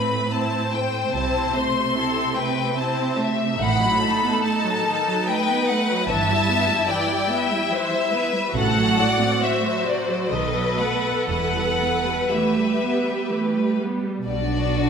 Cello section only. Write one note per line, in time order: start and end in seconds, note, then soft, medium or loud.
0.00 1.14 A2 soft
1.15 3.57 C3 soft
3.61 4.30 A2 soft
6.08 6.75 G2 medium
8.55 9.28 A2 medium
10.32 11.13 B2 soft
11.30 12.15 E2 soft
12.32 12.79 A3 soft
12.82 13.32 B3 soft
13.31 13.81 A3 soft
13.81 14.28 G3 soft
14.27 14.89 B2 soft